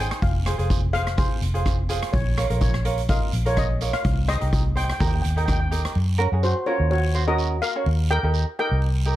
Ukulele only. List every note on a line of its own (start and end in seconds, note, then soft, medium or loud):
0.00 0.23 D#4 medium
0.00 0.23 G#4 medium
0.00 0.23 C5 medium
0.46 0.54 F4 medium
0.46 0.54 G#4 medium
0.46 0.54 C5 medium
0.58 0.80 F4 medium
0.58 0.80 G#4 medium
0.58 0.80 C5 medium
0.93 1.09 F4 medium
0.93 1.09 G#4 medium
0.93 1.09 C5 medium
1.17 1.39 F4 medium
1.17 1.40 G#4 medium
1.17 1.40 C5 medium
1.54 1.76 F4 medium
1.54 1.76 G#4 medium
1.54 1.76 C5 medium
1.89 2.13 F4 medium
1.89 2.14 G#4 medium
1.89 2.14 C5 medium
2.37 2.45 F4 medium
2.37 2.45 A#4 medium
2.37 2.45 C#5 medium
2.50 2.72 F4 medium
2.50 2.72 A#4 medium
2.50 2.72 C#5 medium
2.85 3.00 F4 medium
2.85 3.00 A#4 medium
2.85 3.00 C#5 medium
3.09 3.31 F4 medium
3.09 3.31 A#4 medium
3.09 3.31 D#5 medium
3.45 3.67 F4 medium
3.45 3.67 A#4 medium
3.45 3.67 C#5 medium
3.81 4.05 F4 medium
3.81 4.05 A#4 medium
3.81 4.05 C#5 medium
4.28 4.36 D#4 medium
4.28 4.36 G4 medium
4.28 4.36 C5 medium
4.40 4.62 D#4 medium
4.40 4.63 G4 medium
4.40 4.63 A#4 medium
4.75 4.91 D#4 medium
4.75 4.91 G4 medium
4.75 4.91 C5 medium
5.00 5.22 D#4 medium
5.00 5.22 G4 medium
5.00 5.22 A#4 medium
5.36 5.58 D#4 medium
5.36 5.58 G4 medium
5.36 5.58 A#4 medium
5.71 5.96 D#4 medium
5.71 5.96 G4 medium
5.71 5.96 A#4 medium
6.18 6.27 C#4 medium
6.18 6.27 F#4 medium
6.18 6.27 A#4 medium
6.32 6.54 C#4 medium
6.32 6.54 F#4 medium
6.32 6.54 G#4 medium
6.67 6.97 C#4 medium
6.67 6.96 F#4 medium
6.67 6.96 A#4 medium
7.15 7.23 C#4 medium
7.15 7.23 F#4 medium
7.15 7.23 C5 medium
7.27 7.56 C#4 medium
7.27 7.56 F#4 medium
7.27 7.56 A#4 medium
7.75 7.87 C#4 medium
7.75 7.87 F#4 medium
7.75 7.87 C#5 medium
8.10 8.18 D#4 medium
8.10 8.18 G4 medium
8.10 8.18 A#4 medium
8.23 8.45 D#4 medium
8.23 8.45 G4 medium
8.23 8.45 A#4 medium
8.59 8.88 D#4 medium
8.59 8.88 G4 medium
8.59 8.88 A#4 medium
9.05 9.13 D#4 medium
9.05 9.14 G4 medium
9.05 9.14 A#4 medium